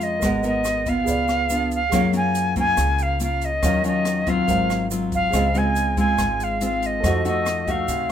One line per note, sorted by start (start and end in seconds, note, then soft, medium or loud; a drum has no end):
0.00 0.18 F2 medium
0.00 0.20 F2 soft
0.00 0.20 G#3 soft
0.00 0.21 C#4 soft
0.00 0.21 F4 medium
0.00 0.17 G#4 soft
0.00 0.18 C5 soft
0.00 0.19 C#5 soft
0.00 0.45 D#5 medium
0.00 0.20 F5 soft
0.00 closed hi-hat soft
0.00 shaker soft
0.19 1.04 G#1 medium
0.19 0.86 G#3 soft
0.19 1.04 A#4 soft
0.19 kick medium
0.19 cross-stick medium
0.19 closed hi-hat soft
0.19 shaker medium
0.23 0.40 B3 soft
0.23 0.41 F#4 medium
0.23 0.41 A#4 medium
0.23 1.06 D#5 soft
0.23 1.07 F#5 soft
0.43 0.83 B3 medium
0.43 0.83 F#4 medium
0.43 0.83 A#4 medium
0.43 0.90 D#5 medium
0.43 closed hi-hat soft
0.43 shaker soft
0.64 cross-stick medium
0.64 closed hi-hat soft
0.64 shaker medium
0.86 1.47 B3 medium
0.86 1.47 F4 medium
0.86 1.73 F5 medium
0.86 kick soft
0.86 closed hi-hat soft
0.86 shaker soft
1.04 1.89 C#2 medium
1.04 1.90 C#3 soft
1.04 1.88 G#4 soft
1.04 1.90 B4 soft
1.04 kick medium
1.04 closed hi-hat soft
1.04 shaker medium
1.09 1.91 D5 soft
1.09 1.92 F5 soft
1.28 cross-stick soft
1.28 closed hi-hat soft
1.28 shaker soft
1.50 1.79 B3 soft
1.50 1.79 D4 soft
1.50 1.79 F4 medium
1.50 closed hi-hat soft
1.50 shaker medium
1.71 2.13 F5 medium
1.71 closed hi-hat soft
1.71 shaker soft
1.90 2.74 F#2 medium
1.90 2.76 F#3 soft
1.90 2.05 A#3 medium
1.90 2.05 C#4 medium
1.90 2.05 F4 medium
1.90 3.58 G#4 soft
1.90 3.59 A#4 soft
1.90 3.60 C#5 soft
1.90 kick medium
1.90 cross-stick medium
1.90 closed hi-hat soft
1.90 shaker medium
1.96 3.61 F5 soft
2.13 2.52 A#3 soft
2.13 2.53 C#4 medium
2.13 2.53 F4 medium
2.13 2.55 G#5 medium
2.13 closed hi-hat soft
2.13 shaker soft
2.35 closed hi-hat soft
2.35 shaker soft
2.56 3.17 A#3 medium
2.56 3.17 C#4 medium
2.56 3.17 F4 medium
2.56 3.04 G#5 medium
2.56 kick medium
2.56 closed hi-hat soft
2.56 shaker soft
2.77 3.59 C#2 medium
2.77 3.61 C#3 soft
2.77 kick soft
2.77 cross-stick medium
2.77 closed hi-hat soft
2.77 shaker medium
2.98 closed hi-hat soft
2.98 shaker soft
3.03 3.22 F5 medium
3.20 3.49 A#3 soft
3.20 3.49 C#4 soft
3.20 3.49 F4 soft
3.20 3.46 F5 medium
3.20 closed hi-hat soft
3.20 shaker medium
3.42 3.86 D#5 medium
3.42 closed hi-hat soft
3.42 shaker soft
3.62 4.44 D#2 medium
3.62 4.46 D#3 medium
3.62 3.81 F#3 medium
3.62 3.81 C#4 medium
3.62 3.81 F4 medium
3.62 4.46 A#4 soft
3.62 4.47 C#5 soft
3.62 4.48 F5 soft
3.62 kick medium
3.62 cross-stick medium
3.62 closed hi-hat soft
3.62 shaker medium
3.84 4.23 F#3 medium
3.84 4.23 C#4 medium
3.84 4.24 F4 medium
3.84 4.31 D#5 medium
3.84 closed hi-hat soft
3.84 shaker soft
4.05 cross-stick medium
4.05 closed hi-hat soft
4.05 shaker soft
4.27 4.87 F#3 medium
4.27 4.87 C4 medium
4.27 4.88 F4 medium
4.27 4.86 F5 medium
4.27 kick soft
4.27 closed hi-hat soft
4.27 shaker soft
4.47 5.29 G#1 medium
4.47 5.31 G#2 soft
4.47 5.31 A#4 soft
4.47 5.30 C5 soft
4.47 5.33 F5 soft
4.47 kick medium
4.47 closed hi-hat soft
4.47 shaker medium
4.70 cross-stick soft
4.70 closed hi-hat soft
4.70 shaker soft
4.91 5.31 F#3 soft
4.91 5.32 C4 soft
4.91 5.32 F4 medium
4.91 closed hi-hat soft
4.91 shaker medium
5.12 5.59 F5 medium
5.12 kick soft
5.12 closed hi-hat soft
5.12 shaker soft
5.30 6.14 C#2 medium
5.30 6.16 C#3 medium
5.30 5.46 G#3 medium
5.30 6.98 G#4 soft
5.30 6.99 C5 soft
5.30 7.00 D#5 soft
5.30 kick medium
5.30 cross-stick medium
5.30 closed hi-hat soft
5.30 shaker medium
5.34 5.46 C4 medium
5.34 5.46 F4 medium
5.34 7.01 F5 medium
5.54 5.93 G#3 soft
5.54 5.94 C4 soft
5.54 5.94 F4 medium
5.54 5.99 G#5 medium
5.54 closed hi-hat soft
5.54 shaker soft
5.76 closed hi-hat soft
5.76 shaker medium
5.97 6.57 G#3 medium
5.97 6.58 C4 medium
5.97 6.58 F4 medium
5.97 6.45 G#5 medium
5.97 kick medium
5.97 closed hi-hat soft
5.97 shaker soft
6.18 6.99 G#1 medium
6.18 7.01 G#2 soft
6.18 kick soft
6.18 cross-stick medium
6.18 closed hi-hat soft
6.18 shaker medium
6.40 6.63 F5 medium
6.40 closed hi-hat soft
6.40 shaker soft
6.61 7.02 G#3 soft
6.61 7.02 C4 soft
6.61 7.02 F4 soft
6.61 closed hi-hat soft
6.61 shaker medium
6.65 6.88 F5 medium
6.83 7.27 D#5 medium
6.83 closed hi-hat soft
6.83 shaker soft
7.00 7.84 F2 medium
7.00 7.87 F3 medium
7.00 8.12 A4 soft
7.00 8.12 C5 soft
7.00 8.12 D#5 soft
7.00 kick medium
7.00 cross-stick medium
7.00 closed hi-hat soft
7.00 shaker medium
7.04 7.22 A3 soft
7.04 7.22 D#4 soft
7.04 7.22 F#4 medium
7.04 8.12 F#4 soft
7.25 7.64 A3 soft
7.25 7.64 D#4 soft
7.25 7.64 F#4 medium
7.25 7.72 D#5 medium
7.25 closed hi-hat soft
7.25 shaker soft
7.46 cross-stick medium
7.46 closed hi-hat soft
7.46 shaker soft
7.67 8.12 A3 medium
7.67 8.12 D#4 medium
7.67 8.12 F#4 medium
7.67 8.12 F5 medium
7.67 kick medium
7.67 closed hi-hat soft
7.67 shaker soft
7.88 8.12 C2 medium
7.88 8.12 C3 soft
7.88 kick medium
7.88 closed hi-hat soft
7.88 shaker medium